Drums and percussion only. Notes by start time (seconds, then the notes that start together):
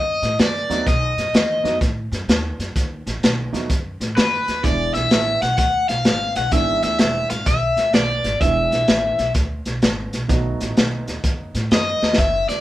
0.23 snare, closed hi-hat
0.39 snare, closed hi-hat
0.71 snare, closed hi-hat
0.87 kick, snare, closed hi-hat
1.18 snare, closed hi-hat
1.34 snare, closed hi-hat
1.65 snare, closed hi-hat
1.81 kick, snare, closed hi-hat
2.12 snare, closed hi-hat
2.29 snare, closed hi-hat
2.60 snare, closed hi-hat
2.76 kick, snare, closed hi-hat
3.07 snare, closed hi-hat
3.23 snare, closed hi-hat
3.54 snare, closed hi-hat
3.70 kick, snare, closed hi-hat
4.01 snare, closed hi-hat
4.17 snare, closed hi-hat
4.48 snare, closed hi-hat
4.64 kick, snare, closed hi-hat
4.95 snare, closed hi-hat
5.11 snare, closed hi-hat
5.42 snare, closed hi-hat
5.58 kick, snare, closed hi-hat
5.89 snare, closed hi-hat
6.05 snare, closed hi-hat
6.35 snare, closed hi-hat
6.51 kick, snare, closed hi-hat
6.83 snare, closed hi-hat
6.99 snare, closed hi-hat
7.30 snare, closed hi-hat
7.46 kick, snare, closed hi-hat
7.77 snare, closed hi-hat
7.93 snare, closed hi-hat
8.24 snare, closed hi-hat
8.41 kick, snare, closed hi-hat
8.72 snare, closed hi-hat
8.88 snare, closed hi-hat
9.19 snare, closed hi-hat
9.34 kick, snare, closed hi-hat
9.65 snare, closed hi-hat
9.82 snare, closed hi-hat
10.13 snare, closed hi-hat
10.29 kick, snare, closed hi-hat
10.61 snare, closed hi-hat
10.77 snare, closed hi-hat
11.08 snare, closed hi-hat
11.24 kick, snare, closed hi-hat
11.55 snare, closed hi-hat
11.71 snare, closed hi-hat
12.03 snare
12.13 snare
12.18 kick, snare, closed hi-hat
12.49 snare, closed hi-hat